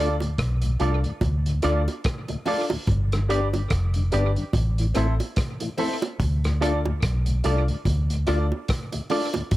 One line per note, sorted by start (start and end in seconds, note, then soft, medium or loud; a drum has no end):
0.00 0.35 D2 medium
0.00 0.14 D4 medium
0.00 0.14 F4 medium
0.00 0.15 F4 medium
0.00 0.14 A4 medium
0.00 0.15 A4 medium
0.00 0.14 D5 loud
0.00 0.15 D5 loud
0.20 0.30 D2 medium
0.20 0.30 A2 medium
0.20 closed hi-hat soft
0.20 high bongo medium
0.38 0.78 B1 loud
0.38 kick loud
0.38 cross-stick loud
0.38 closed hi-hat loud
0.62 0.71 D2 medium
0.62 0.71 A2 soft
0.62 closed hi-hat medium
0.79 1.03 C2 medium
0.79 0.92 A3 medium
0.79 0.97 D4 medium
0.79 0.92 D4 medium
0.79 0.97 F4 medium
0.79 0.98 F4 medium
0.79 0.92 F4 medium
0.79 0.97 A4 medium
0.79 0.98 A4 medium
0.79 0.98 D5 medium
0.79 closed hi-hat medium
1.04 1.13 D2 medium
1.04 1.13 A2 medium
1.04 1.11 A4 soft
1.04 1.11 D5 soft
1.04 closed hi-hat soft
1.21 1.61 D2 loud
1.21 kick medium
1.21 closed hi-hat medium
1.21 high bongo medium
1.46 1.54 D2 medium
1.46 1.54 A2 medium
1.46 closed hi-hat soft
1.62 1.87 D2 medium
1.62 1.74 A3 medium
1.62 1.80 D4 loud
1.62 1.75 D4 medium
1.62 1.80 F4 medium
1.62 1.81 F4 medium
1.62 1.75 F4 medium
1.62 1.80 A4 loud
1.62 1.81 A4 medium
1.62 1.81 D5 medium
1.62 1.81 D5 loud
1.62 cross-stick medium
1.62 closed hi-hat medium
1.62 high bongo medium
1.88 closed hi-hat soft
1.88 high bongo medium
2.04 kick loud
2.04 cross-stick loud
2.04 closed hi-hat medium
2.28 2.37 D2 medium
2.28 2.37 A2 medium
2.28 muted clean electric guitar stroke soft
2.28 closed hi-hat soft
2.28 high bongo medium
2.45 2.57 A3 medium
2.45 2.63 D4 medium
2.45 2.58 D4 medium
2.45 2.63 F4 medium
2.45 2.64 F4 medium
2.45 2.58 F4 medium
2.45 2.63 A4 medium
2.45 2.64 A4 medium
2.45 2.64 D5 loud
2.45 2.64 D5 medium
2.45 open hi-hat medium
2.45 low bongo medium
2.70 2.79 D2 medium
2.70 2.79 A2 medium
2.70 high bongo medium
2.87 3.67 G1 medium
2.87 kick loud
2.87 closed hi-hat medium
2.87 high bongo medium
3.12 3.20 G2 medium
3.12 3.20 D3 medium
3.12 cross-stick medium
3.12 closed hi-hat medium
3.28 3.41 B3 medium
3.28 3.46 D4 medium
3.28 3.41 D4 medium
3.28 3.46 G4 medium
3.28 3.47 G4 medium
3.28 3.41 G4 medium
3.28 3.47 B4 medium
3.28 3.47 D5 medium
3.28 closed hi-hat medium
3.53 3.62 G2 medium
3.53 3.62 D3 medium
3.53 closed hi-hat soft
3.53 high bongo medium
3.70 4.10 F1 medium
3.70 kick loud
3.70 cross-stick loud
3.70 closed hi-hat loud
3.94 4.03 G2 medium
3.94 4.03 D3 medium
3.94 closed hi-hat medium
4.12 4.36 G1 loud
4.12 4.24 B3 medium
4.12 4.29 D4 medium
4.12 4.24 D4 medium
4.12 4.29 G4 medium
4.12 4.30 G4 medium
4.12 4.24 G4 medium
4.12 4.30 B4 medium
4.12 4.30 D5 loud
4.12 closed hi-hat medium
4.36 4.45 G2 medium
4.36 4.45 D3 medium
4.36 4.43 B4 soft
4.36 4.43 D5 soft
4.36 closed hi-hat soft
4.53 4.93 A1 medium
4.53 kick medium
4.53 closed hi-hat medium
4.53 high bongo medium
4.78 4.87 A2 medium
4.78 4.87 E3 medium
4.78 closed hi-hat soft
4.94 5.19 A1 medium
4.94 5.07 A3 medium
4.94 5.12 C4 loud
4.94 5.13 C4 medium
4.94 5.07 C4 medium
4.94 5.12 E4 medium
4.94 5.13 E4 medium
4.94 5.07 E4 medium
4.94 5.12 A4 medium
4.94 5.14 A4 medium
4.94 5.13 C5 loud
4.94 cross-stick medium
4.94 closed hi-hat medium
4.94 high bongo soft
5.20 closed hi-hat soft
5.20 high bongo medium
5.36 kick loud
5.36 cross-stick loud
5.36 closed hi-hat medium
5.60 5.69 A2 medium
5.60 5.69 E3 medium
5.60 muted clean electric guitar stroke soft
5.60 closed hi-hat medium
5.60 high bongo soft
5.78 5.90 A3 medium
5.78 5.95 C4 loud
5.78 5.96 C4 medium
5.78 5.90 C4 medium
5.78 5.95 E4 loud
5.78 5.96 E4 medium
5.78 5.90 E4 medium
5.78 5.96 A4 medium
5.78 5.96 C5 loud
5.78 open hi-hat medium
5.78 low bongo medium
6.02 closed hi-hat soft
6.02 high bongo medium
6.20 6.99 D2 medium
6.20 kick loud
6.20 closed hi-hat medium
6.20 high bongo medium
6.44 6.52 D2 medium
6.44 6.52 A2 medium
6.44 cross-stick medium
6.44 closed hi-hat medium
6.61 6.73 A3 medium
6.61 6.78 D4 medium
6.61 6.73 D4 medium
6.61 6.78 F4 medium
6.61 6.79 F4 medium
6.61 6.73 F4 medium
6.61 6.79 A4 medium
6.61 6.79 A4 loud
6.61 6.79 D5 loud
6.61 closed hi-hat medium
6.85 6.94 D2 medium
6.85 6.94 A2 medium
6.85 high bongo medium
7.02 7.42 B1 medium
7.02 kick medium
7.02 cross-stick loud
7.02 closed hi-hat loud
7.26 7.35 D2 medium
7.26 7.35 A2 medium
7.26 closed hi-hat medium
7.44 7.68 C2 medium
7.44 7.56 A3 medium
7.44 7.61 D4 medium
7.44 7.56 D4 medium
7.44 7.61 F4 medium
7.44 7.62 F4 medium
7.44 7.56 F4 medium
7.44 7.62 A4 medium
7.44 7.62 A4 loud
7.44 7.62 D5 loud
7.44 7.63 D5 medium
7.44 closed hi-hat medium
7.68 7.77 D2 medium
7.68 7.77 A2 medium
7.68 7.75 A4 soft
7.68 7.75 D5 soft
7.68 closed hi-hat soft
7.85 8.25 D2 medium
7.85 kick medium
7.85 closed hi-hat medium
7.85 high bongo medium
8.10 8.18 D2 medium
8.10 8.18 A2 medium
8.10 closed hi-hat medium
8.27 8.51 D2 medium
8.27 8.38 A3 medium
8.27 8.44 D4 loud
8.27 8.39 D4 medium
8.27 8.44 F4 medium
8.27 8.45 F4 medium
8.27 8.39 F4 medium
8.27 8.45 A4 medium
8.27 8.45 D5 loud
8.27 8.46 D5 medium
8.27 cross-stick medium
8.27 closed hi-hat medium
8.27 high bongo soft
8.52 high bongo medium
8.68 kick loud
8.68 cross-stick loud
8.68 closed hi-hat medium
8.92 9.01 D2 medium
8.92 9.01 A2 medium
8.92 muted clean electric guitar stroke medium
8.92 closed hi-hat medium
8.92 high bongo soft
9.10 9.22 A3 medium
9.10 9.27 D4 loud
9.10 9.22 D4 medium
9.10 9.28 F4 medium
9.10 9.27 F4 medium
9.10 9.22 F4 medium
9.10 9.28 A4 medium
9.10 9.28 D5 loud
9.10 9.28 D5 medium
9.10 open hi-hat medium
9.10 low bongo medium
9.34 9.43 D2 medium
9.34 9.43 A2 medium
9.34 closed hi-hat soft
9.34 high bongo medium
9.51 9.57 G1 loud
9.51 kick loud
9.51 closed hi-hat loud
9.51 high bongo medium